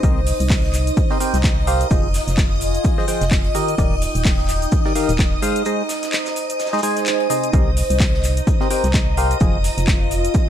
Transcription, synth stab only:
0.03 C4 G4 A#4 C5 D#5
1.11 C4 G4 A#4 C5 D#5
1.20 C4 G4 A#4 C5 G5
1.67 G4 A#4 C5 F5
1.91 F3 F4 G#4 C5 D#5
2.98 F3 F4 G#4 C5 D#5
3.08 F3 F4 G#4 C5 G5
3.55 D#3 D#4 G4 A#4 D#5
3.78 D#3 D#4 G4 A#4 D5
4.85 D#3 D#4 G4 A#4 D5
4.95 D#3 D#4 G4 A#4 F5
5.42 G#3 D#4 G#4 C5 F5
5.66 G#3 D#4 G#4 C5 D#5
6.73 G#3 D#4 G#4 C5 D#5
6.83 G#3 D#4 G#4 C5 G#5
7.30 C3 D#4 G#4 C5 D#5
7.53 C4 G4 A#4 C5 D#5
8.61 C4 G4 A#4 C5 D#5
8.71 C4 G4 A#4 C5 G5
9.17 G4 A#4 C5 F5
9.41 F3 F4 G#4 C5 D#5

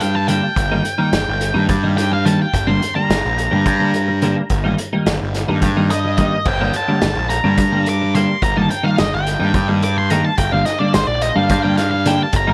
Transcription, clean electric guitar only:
0.01 muted clean electric guitar stroke
0.15 muted clean electric guitar stroke
0.28 D3 G3 A#3 D4
0.71 D#3 G3 A#3 D#4
0.84 muted clean electric guitar stroke
0.98 D#3 G3 A#3 D#4
1.54 D#3 G3 A#3 D#4
1.83 D#3 G3 A#3 D#4
1.98 muted clean electric guitar stroke
2.11 muted clean electric guitar stroke
2.26 D#3 G3 A#3 D#4
2.67 D3 G3 A#3 D4
2.82 muted clean electric guitar stroke
2.96 D3 G3 A#3 D4
3.51 D3 G3 A#3 D4
3.80 D3 G3 A#3 D4
3.94 muted clean electric guitar stroke
4.08 muted clean electric guitar stroke
4.23 D3 G3 A#3 D4
4.64 D#3 G3 A#3 D#4
4.78 muted clean electric guitar stroke
4.93 D#3 G3 A#3 D#4
5.48 D#3 G3 A#3 D#4
5.77 D#3 G3 A#3 D#4
5.92 muted clean electric guitar stroke
6.04 muted clean electric guitar stroke
6.18 D#3 G3 A#3 D#4
6.61 D3 G3 A#3 D4
6.74 muted clean electric guitar stroke
6.88 D3 G3 A#3 D4
7.44 D3 G3 A#3 D4
7.72 D3 G3 A#3 D4
7.87 muted clean electric guitar stroke
8.02 muted clean electric guitar stroke
8.15 D3 G3 A#3 D4
8.57 D#3 G3 A#3 D#4
8.70 muted clean electric guitar stroke
8.83 D#3 G3 A#3 D#4
9.40 D#3 G3 A#3 D#4
9.68 D#3 G3 A#3 D#4
9.83 muted clean electric guitar stroke
9.96 muted clean electric guitar stroke
10.11 D#3 G3 A#3 D#4
10.52 D3 G3 A#3 D4
10.66 muted clean electric guitar stroke
10.80 D3 G3 A#3 D4
11.36 D3 G3 A#3 D4
11.64 D3 G3 A#3 D4
11.78 muted clean electric guitar stroke
11.92 muted clean electric guitar stroke
12.06 D3 G3 A#3 D4
12.47 D#3 G3 A#3 D#4

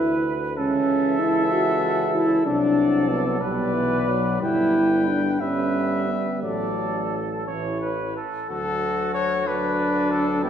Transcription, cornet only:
Already playing: E5
0.57 E5
2.46 D5
3.40 D5
4.42 G5
5.40 E5
6.43 D5
7.47 C#5
8.50 A4
9.14 C#5
9.48 B4
10.11 A4
10.43 G4

